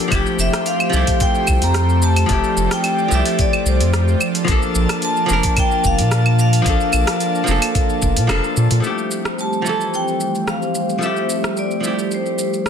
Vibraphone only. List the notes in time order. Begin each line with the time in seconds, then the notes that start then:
0.40 E5
0.67 F5
1.22 G5
1.64 A#5
2.04 A5
2.73 G5
3.14 E5
3.40 D5
3.68 C5
5.05 A5
5.59 G5
5.87 F5
6.41 F5
9.41 A5
9.95 G5
10.50 F5
11.04 E5
11.59 D5
12.14 C5